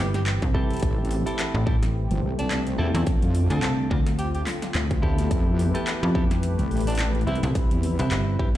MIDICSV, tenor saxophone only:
0, 0, Header, 1, 2, 480
1, 0, Start_track
1, 0, Key_signature, 0, "minor"
1, 0, Tempo, 560748
1, 705, Time_signature, 4, 2, 24, 8
1, 7337, End_track
2, 0, Start_track
2, 0, Title_t, "Tenor saxophone"
2, 0, Program_c, 0, 66
2, 124, Note_on_c, 0, 67, 76
2, 189, Note_off_c, 0, 67, 0
2, 2044, Note_on_c, 0, 62, 93
2, 2240, Note_off_c, 0, 62, 0
2, 2384, Note_on_c, 0, 64, 89
2, 2472, Note_off_c, 0, 64, 0
2, 2524, Note_on_c, 0, 64, 74
2, 2589, Note_off_c, 0, 64, 0
2, 3001, Note_on_c, 0, 69, 95
2, 3199, Note_off_c, 0, 69, 0
2, 3586, Note_on_c, 0, 67, 87
2, 3673, Note_off_c, 0, 67, 0
2, 3721, Note_on_c, 0, 67, 80
2, 3788, Note_off_c, 0, 67, 0
2, 5882, Note_on_c, 0, 62, 96
2, 6079, Note_off_c, 0, 62, 0
2, 6227, Note_on_c, 0, 64, 91
2, 6313, Note_off_c, 0, 64, 0
2, 6360, Note_on_c, 0, 64, 69
2, 6427, Note_off_c, 0, 64, 0
2, 7337, End_track
0, 0, End_of_file